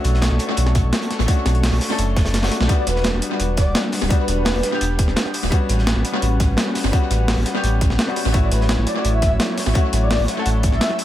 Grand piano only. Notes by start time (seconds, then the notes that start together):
Already playing: A3 C#4 D4 F#4
0.47 A3 C#4 D4 F#4
1.26 A3 C#4 D4 F#4
1.88 A3 C#4 D4 A4
2.42 A3 C#4 D4 F#4
2.67 G3 B3 D4 F#4
3.29 G3 B3 D4 F#4
4.09 G3 B3 D4 F#4
4.71 G3 B3 D4 G4
5.50 G3 B3 C#4 F#4
6.12 G3 B3 C#4 F#4
6.91 G3 B3 C#4 F#4
7.53 G3 B3 C#4 G4
8.07 G3 B3 C#4 F#4
8.32 A3 C#4 E4 F#4
8.94 A3 C#4 E4 F#4
9.73 A3 C#4 E4 F#4
10.36 A3 C#4 E4 A4